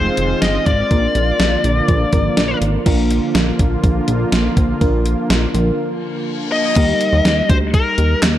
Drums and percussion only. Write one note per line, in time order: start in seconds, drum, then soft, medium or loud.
0.17 closed hi-hat medium
0.42 snare loud
0.42 closed hi-hat medium
0.66 kick medium
0.66 closed hi-hat medium
0.91 kick loud
0.91 closed hi-hat medium
1.15 closed hi-hat medium
1.40 snare loud
1.40 closed hi-hat medium
1.64 closed hi-hat medium
1.88 kick loud
1.88 closed hi-hat medium
2.13 kick loud
2.13 closed hi-hat medium
2.37 snare loud
2.37 closed hi-hat medium
2.62 closed hi-hat medium
2.86 kick loud
2.86 closed hi-hat medium
2.86 crash loud
3.10 closed hi-hat medium
3.35 snare loud
3.35 closed hi-hat medium
3.59 kick medium
3.59 closed hi-hat medium
3.84 kick loud
3.84 closed hi-hat medium
4.08 closed hi-hat medium
4.32 snare loud
4.32 closed hi-hat medium
4.57 kick loud
4.57 closed hi-hat medium
4.81 kick loud
4.81 closed hi-hat medium
5.06 closed hi-hat medium
5.30 snare loud
5.30 closed hi-hat medium
5.55 closed hi-hat medium
6.76 kick loud
6.76 closed hi-hat medium
6.76 crash loud
7.01 closed hi-hat medium
7.25 snare loud
7.25 closed hi-hat medium
7.50 kick loud
7.50 closed hi-hat medium
7.74 kick loud
7.74 closed hi-hat medium
7.98 closed hi-hat medium
8.23 snare loud
8.23 clap loud
8.23 closed hi-hat medium